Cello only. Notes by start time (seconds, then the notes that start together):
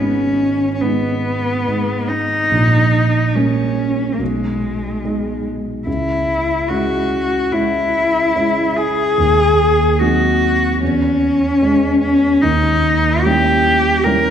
Already playing: C#4
0.74 C#4
0.81 B3
2.08 D#4
3.35 C#4
4.13 A#3
4.22 G#3
5.88 E4
6.69 F#4
7.52 E4
8.76 G#4
9.99 F#4
10.83 C#4
12.01 C#4
12.41 D#4
13.23 G4
14.04 A#4